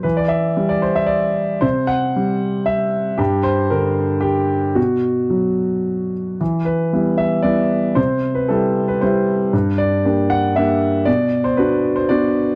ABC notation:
X:1
M:3/4
L:1/16
Q:1/4=115
K:Em
V:1 name="Grand piano"
B d e3 d c e d4 | c2 f6 e4 | G2 c2 _B4 G4 | F8- F2 z2 |
z2 B4 e2 d4 | c3 B A3 B c4 | z2 d4 f2 e4 | d3 c B3 c d4 |]
V:2 name="Grand piano"
E,4 G,8 | C,4 G,8 | G,,4 D,8 | B,,4 F,8 |
E,4 [G,B,E]4 [G,B,E]4 | C,4 [G,EG]4 [G,EG]4 | G,,4 [_B,DG]4 [B,DG]4 | B,,4 [B,DF]4 [B,DF]4 |]